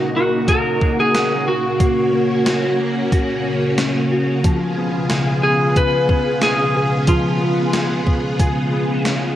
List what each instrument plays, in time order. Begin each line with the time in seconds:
Already playing: string machine C#3 A#3 D#4 F#4, clean electric guitar A#3 D#4 F#4
0.15 clean electric guitar A#3, electric slide guitar F#4
0.48 clean electric guitar F#4, electric slide guitar A#4, kick, closed hi-hat
0.81 clean electric guitar A#3, kick
1.00 electric slide guitar G#4
1.14 clean electric guitar C#4, snare, closed hi-hat
1.47 clean electric guitar F#4, electric slide guitar F#4
1.80 clean electric guitar A#3, string machine C#4, kick, closed hi-hat
2.13 clean electric guitar A#3
2.46 clean electric guitar F#4, snare, closed hi-hat
2.79 clean electric guitar A#3
3.12 clean electric guitar F#4, kick, closed hi-hat
3.45 clean electric guitar A#3
3.78 clean electric guitar C#4, snare, closed hi-hat
4.11 clean electric guitar F#4
4.44 clean electric guitar F3, string machine B3 F4 G#4, kick, closed hi-hat
4.77 clean electric guitar B3
5.10 clean electric guitar G#4, snare, closed hi-hat
5.43 clean electric guitar B3, electric slide guitar G#4
5.76 clean electric guitar G#4, electric slide guitar B4, kick, closed hi-hat
6.09 clean electric guitar B3, kick
6.41 clean electric guitar B3, electric slide guitar G#4, snare, closed hi-hat
6.58 clean electric guitar C#4
6.75 clean electric guitar G#4
7.07 clean electric guitar F3, electric slide guitar F4, kick, closed hi-hat
7.41 clean electric guitar B3
7.73 clean electric guitar G#4, snare, closed hi-hat
8.06 clean electric guitar B3, kick
8.39 clean electric guitar G#4, kick, closed hi-hat
8.72 clean electric guitar B3
9.05 clean electric guitar C#4, snare, closed hi-hat